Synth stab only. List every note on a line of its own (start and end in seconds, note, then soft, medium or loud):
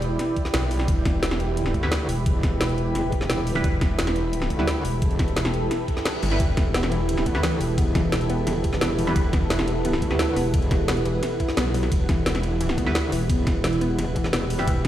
1.83 1.88 G3 medium
1.83 1.88 E4 medium
1.83 1.88 B4 medium
3.55 3.64 G3 loud
3.55 3.64 E4 medium
3.55 3.64 B4 loud
4.59 4.64 G3 medium
4.59 4.64 E4 medium
4.59 4.64 B4 medium
6.31 6.40 G3 loud
6.31 6.40 E4 medium
6.31 6.40 B4 loud
7.35 7.40 G3 medium
7.35 7.40 E4 medium
7.35 7.40 B4 medium
9.07 9.16 G3 loud
9.07 9.16 E4 medium
9.07 9.16 B4 loud
10.11 10.16 G3 medium
10.11 10.16 E4 medium
10.11 10.16 B4 medium
12.86 12.92 G3 medium
12.86 12.92 E4 medium
12.86 12.92 B4 medium
14.59 14.67 G3 loud
14.59 14.67 E4 medium
14.59 14.67 B4 loud